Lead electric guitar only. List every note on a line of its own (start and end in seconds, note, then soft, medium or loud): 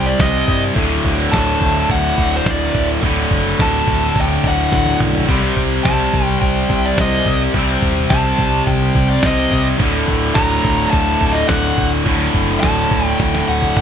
0.06 0.21 D5 medium
0.21 0.62 D#5 medium
1.32 1.90 A5 loud
1.91 2.34 F#5 loud
2.36 2.48 C5 medium
2.50 2.88 D5 medium
3.61 4.18 A5 loud
4.21 4.47 G5 medium
4.48 4.98 F#5 medium
5.83 6.24 A5 loud
6.24 6.37 G5 loud
6.41 6.85 G5 medium
6.86 7.01 D5 medium
7.01 7.41 D#5 medium
8.10 8.63 A5 loud
8.67 9.06 G5 medium
9.10 9.26 D5 medium
9.26 9.67 D#5 medium
10.35 10.90 A#5 loud
10.91 11.35 A5 loud
11.33 11.47 D#5 medium
11.47 11.91 F#5 medium
12.60 13.06 A5 loud
13.06 13.19 G5 loud
13.19 13.48 G5 loud
13.48 13.76 F#5 medium
13.77 13.81 F#5 medium